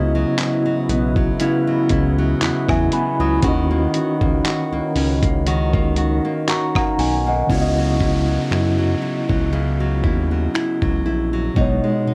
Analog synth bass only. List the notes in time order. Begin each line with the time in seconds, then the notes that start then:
Already playing: C#2
0.89 B1
1.90 C#2
2.41 E2
2.69 E2
3.19 C#2
3.43 D#2
4.21 C#2
4.72 C#2
4.95 C#2
6.98 B1
7.50 C#2
8.51 F#2
9.29 C#2
10.04 D#2
10.82 C#2
11.05 A#1
11.57 B1
12.07 B2